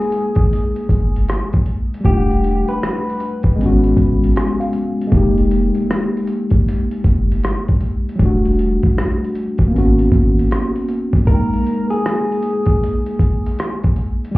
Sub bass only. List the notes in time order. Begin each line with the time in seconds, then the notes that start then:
0.36 G#1
0.89 G1
2.05 E1
3.44 G1
3.58 G#1
3.97 G#1
5.12 F1
6.52 G#1
7.04 G1
8.20 E1
9.59 G1
9.73 G#1
10.12 G#1